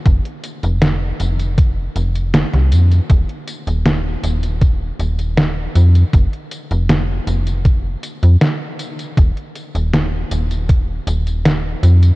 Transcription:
<<
  \new Staff \with { instrumentName = "FM bass" } { \clef bass \time 4/4 \key f \dorian \tempo 4 = 79 f,,16 r8 f,,8. f,,4 f,,8. c,16 f,16 r16 | ees,,16 r8 ees,,8. ees,,4 ees,,4 f,16 r16 | f,,16 r8 f,,8. f,,4 r16 f,16 r4 | ees,,16 r8 ees,,8. ees,,4 ees,,4 f,16 r16 | }
  \new DrumStaff \with { instrumentName = "Drums" } \drummode { \time 4/4 <hh bd tamb>16 hh16 <hh tamb>16 <hh tamb>16 <hh sn tamb>8 <hh tamb>16 <hh tamb>16 <hh bd tamb>8 <hh tamb>16 <hh tamb>16 <hh sn tamb>16 <hh sn>16 <hh tamb>16 <hh tamb>16 | <hh bd tamb>16 hh16 <hh tamb>16 <hh tamb>16 <hh sn tamb>8 <hh tamb>16 <hh tamb>16 <hh bd tamb>8 <hh tamb>16 <hh tamb>16 <hh sn tamb>8 <hh tamb>16 <hh tamb>16 | <hh bd tamb>16 hh16 <hh tamb>16 <hh tamb>16 <hh sn tamb>8 <hh tamb>16 <hh tamb>16 <hh bd tamb>8 <hh tamb>16 <hh tamb>16 <hh sn tamb>8 <hh tamb>16 <hh tamb>16 | <hh bd tamb>16 hh16 <hh tamb>16 <hh tamb>16 <hh sn tamb>8 <hh tamb>16 <hh tamb>16 <hh bd tamb>8 <hh tamb>16 <hh tamb>16 <hh sn tamb>8 <hh tamb>16 <hh tamb>16 | }
>>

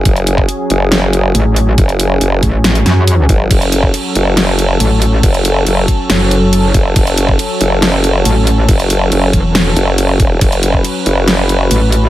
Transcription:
<<
  \new Staff \with { instrumentName = "Supersaw synth" } { \time 4/4 \key fis \minor \tempo 4 = 139 << { gis'1~ | gis'1 | a'1~ | a'1~ |
a'1~ | a'1 | b'1 | } \\ { <fis cis'>1~ | <fis cis'>1~ | <fis cis'>1~ | <fis cis'>1~ |
<fis cis'>1~ | <fis cis'>1~ | <fis cis'>1 | } >> }
  \new Staff \with { instrumentName = "Wobble bass" } { \clef bass \time 4/4 \key fis \minor r2. a,,4 | r4. a,,4 fis,4 r8 | r2. a,,4 | r2 fis,,4. r8 |
r2. a,,4 | r4. e,,4 r4. | r2. a,,4 | }
  \new Staff \with { instrumentName = "Wobble bass" } { \clef bass \time 4/4 \key fis \minor fis,,4 r8 fis,,4. r4 | fis,,4 fis,,8 r2 gis,,8 | fis,,4 r8 fis,,4. r4 | fis,,4 fis,,8 r2 fis,,8 |
fis,,4 r8 fis,,4. r4 | fis,,4 fis,,8 r4 fis,,4 e,,8 | fis,,4 r8 fis,,4. r4 | }
  \new DrumStaff \with { instrumentName = "Drums" } \drummode { \time 4/4 <hh bd>16 hh16 hh16 bd16 hh8 hh8 <hh sn>8 hh8 hh8 hh8 | <hh bd>16 hh16 hh8 hh8 <hh bd>8 <hh sn>16 hh16 <hh sn>8 hh8 <hh bd>8 | <cymc hh bd>16 hh16 hh16 bd16 <cymc hh>8 hh8 <cymc hh sn>8 hh8 <cymc hh>8 hh8 | <cymc hh bd>16 hh16 hh8 <cymc hh>8 <hh bd>8 <cymc hh sn>8 hh8 <cymc hh>8 <hh bd>8 |
<cymc hh bd>16 hh16 hh16 bd16 <cymc hh>8 hh8 <cymc hh sn>8 hh8 <cymc hh>8 hh8 | <cymc hh bd>16 hh16 hh8 <cymc hh>8 <hh bd>8 <cymc hh sn>8 hh8 <cymc hh>8 <hh bd>8 | <cymc hh bd>16 hh16 hh16 bd16 <cymc hh>8 hh8 <cymc hh sn>8 hh8 <cymc hh>8 hh8 | }
>>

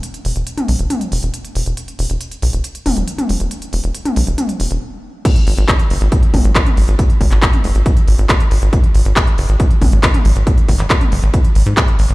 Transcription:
<<
  \new Staff \with { instrumentName = "Analog synth bass" } { \clef bass \time 4/4 \key e \lydian \tempo 4 = 138 r8 e,,16 e,,16 r8 b,,16 e,,16 r8 e,,16 e,,16 r8 e,,16 e,,16 | r8 e,,16 e,,16 r8 b,,16 e,,16 r8 e,,16 e,,16 r8 e,,16 e,,16 | r8 e,,16 e,,16 r8 b,,16 e,,16 r8 e,,16 e,,16 r4 | r8 gis,,16 gis,,16 r8 fis,,16 gis,,16 r8 gis,,16 gis,,16 r8 gis,,16 gis,,16 |
r8 gis,,16 gis,,16 r8 fis,,16 gis,,16 r8 gis,,16 gis,,16 r8 gis,,16 gis,,16 | r8 gis,,16 gis,,16 r8 fis,,16 gis,,16 r8 gis,,16 gis,,16 r8 gis,,16 gis,,16 | r8 gis,,16 gis,,16 r8 fis,,16 gis,,16 r8 gis,,16 gis,16 r8 gis,,16 gis,,16 | }
  \new DrumStaff \with { instrumentName = "Drums" } \drummode { \time 4/4 hh16 hh16 hho16 hh16 hh16 <hh toml>16 hho16 hh16 <hh toml>16 hh16 hho16 hh16 hh16 hh16 hho16 hh16 | hh16 hh16 hho16 hh16 hh16 hh16 hho16 hh16 hh16 hh16 <hho toml>16 hh16 hh16 <hh toml>16 hho16 hh16 | hh16 hh16 hho16 hh16 hh16 <hh toml>16 hho16 hh16 <hh toml>16 hh16 hho16 hh16 r4 | <cymc hh bd>16 hh16 hho16 hh16 <hc hh bd>16 hh16 hho16 hh16 <hh bd>16 hh16 <hho bd toml>16 hh16 <hc hh bd>16 <hh toml>16 hho16 hh16 |
<hh bd>16 hh16 <hho bd>16 <hc hh>16 <hc hh bd>16 <hh toml>16 hho16 hh16 <hh bd>16 hh16 hho16 hh16 <hc hh bd>16 hh16 hho16 hh16 | <hh bd>16 hh16 hho16 hh16 <hc hh bd>16 hh16 hho16 hh16 <hh bd>16 hh16 <hho bd toml>16 hh16 <hc hh bd>16 <hh toml>16 hho16 hh16 | <hh bd>16 hh16 <hho bd>16 <hc hh>16 <hc hh bd>16 <hh toml>16 hho16 hh16 <hh bd>16 hh16 hho16 hh16 <hc hh bd>16 hh16 hho16 hh16 | }
>>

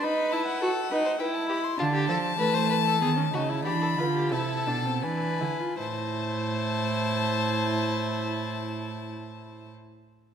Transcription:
<<
  \new Staff \with { instrumentName = "Violin" } { \time 3/4 \key a \minor \tempo 4 = 85 b''8 a''16 fis''4~ fis''16 g''16 a''16 b''16 c'''16 | a''2. | b''4 a''4 gis''4 | a''2.~ |
a''2. | }
  \new Staff \with { instrumentName = "Violin" } { \time 3/4 \key a \minor b'4 a'8 b'16 c''16 b'8 g'8 | f'16 g'16 a'8 b'16 c''16 b'16 a'16 gis'8 fis'8 | g'16 a'16 b'16 g'16 a'4 b'4 | c''2.~ |
c''2. | }
  \new Staff \with { instrumentName = "Viola" } { \time 3/4 \key a \minor dis'8 e'8 fis'8 dis'8 e'4 | d'4 a4 b16 cis'16 dis'16 e'16 | d'8 f'8 e'8 d'16 c'16 d'8 e'16 f'16 | e'2.~ |
e'2. | }
  \new Staff \with { instrumentName = "Cello" } { \clef bass \time 3/4 \key a \minor r2. | d8 f8 e4 dis8 cis8 | e8 d8 c8 b,8 e8 d8 | a,2.~ |
a,2. | }
>>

